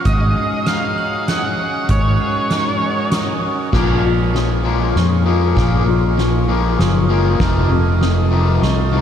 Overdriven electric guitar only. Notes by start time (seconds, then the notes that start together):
3.72 A#2 F3 A#3
4.03 A#2 F3
4.34 A#2 F3
4.64 A#2 F3 A#3
4.95 A#2 F3
5.26 A#2 F3 A#3
5.56 A#2 F3 A#3
5.86 A#2 F3
6.17 A#2 F3
6.48 A#2 F3 A#3
6.79 A#2 F3
7.09 A#2 F3 A#3
7.40 F2 C3 D#3
7.71 F2 C3
8.01 F2 C3
8.31 F2 C3 D#3
8.61 F2 C3
8.92 F2 C3 D#3